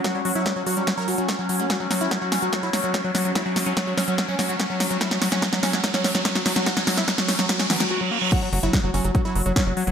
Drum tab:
CC |----------------|----------------|----------------|----------------|
HH |x-oxx-oxx-oxx-ox|x-oxx-oxx-oxx-ox|x-oxx-oxx-oxx-ox|x-oxx-oxx-oxx-ox|
SD |o---o---o---o---|o-o-o-o-o-o-o-o-|o-o-o-o-o-o-o-o-|oooooooooooooooo|
BD |o---o---o---o---|o---o---o---o---|o---o---o---o---|o---o---o---o---|

CC |----------------|x---------------|
HH |x-o-x-oxx-ox----|x-oxx-oxx-oxx-ox|
SD |oooooooooooo----|----o-------o---|
BD |o---o---o-------|o---o---o---o---|